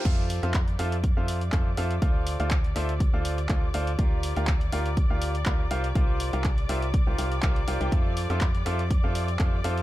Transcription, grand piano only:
X:1
M:4/4
L:1/16
Q:"Swing 16ths" 1/4=122
K:F
V:1 name="Grand piano"
[FAcef]3 [FAcef] z2 [FAcef] z2 [FAcef]2 z [FAcef] z [FAcef] z | [FAcdf]3 [FAcdf] z2 [FAcde] z2 [FAcdf]2 z [FAcdf] z [FAcdf] z | [FGBdf]3 [FGBdf] z2 [FGBdf] z2 [FGBdf]2 z [FGBdf] z [FGBcf] z | [FGBcf]3 [FGBcf] z2 [FGBce] z2 [FGBcf] [FGBcf] z [FGBcf] z [FGBcf] [FGBcg] |
[FAcef]3 [FAcef] z2 [FAcef] z2 [FAcef]2 z [FAcef] z [FAcef] z |]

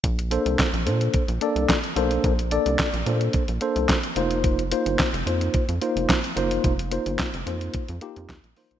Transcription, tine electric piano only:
X:1
M:4/4
L:1/8
Q:1/4=109
K:Bb
V:1 name="Tine electric piano"
z [B,DAc] z [B,DAc] z [B,DAd] z [B,DAc] | z [B,DAd] z [B,DAc] z [B,DAc] z [B,EFc]- | [B,EFc] [B,EFc] z [B,EFc] z [B,EFc] z [B,EFc] | z [B,EFc] z [B,EFc] z [B,EFG] z [B,EFc] |]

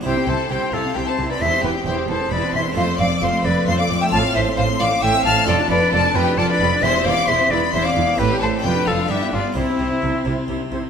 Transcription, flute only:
X:1
M:3/4
L:1/16
Q:1/4=132
K:C
V:1 name="Flute"
c2 c2 c2 A2 c c2 d | e2 B2 c2 c2 d2 e2 | f2 f2 f2 d2 f f2 g | a2 e2 f2 f2 g2 a2 |
d2 d2 d2 B2 d d3 | e2 f2 e2 d2 e f3 | B2 c2 B2 A2 G2 F2 | E8 z2 c2 |]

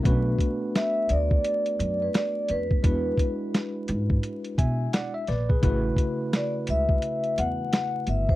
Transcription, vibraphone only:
X:1
M:4/4
L:1/16
Q:"Swing 16ths" 1/4=86
K:Bphr
V:1 name="Vibraphone"
z4 e2 d4- d B d2 B2- | B4 z12 | z4 d2 e4 f4 e c |]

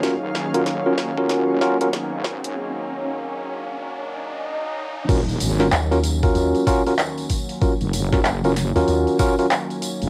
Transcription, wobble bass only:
X:1
M:4/4
L:1/16
Q:"Swing 16ths" 1/4=95
K:Ebm
V:1 name="Wobble bass" clef=bass
E,,,2 D,, E,,,2 G,,,6 z2 A,,,3 | z16 | E,,,2 A,,,2 z12 | z G,,,6 z8 E,,, |]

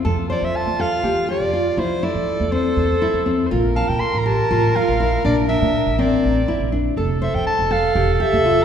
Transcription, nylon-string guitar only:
X:1
M:7/8
L:1/8
Q:1/4=121
K:F
V:1 name="Nylon-string guitar"
A c2 A G G F | E E2 C2 E C | F a2 G F F E | D D2 C2 E D |
A c2 A G G F |]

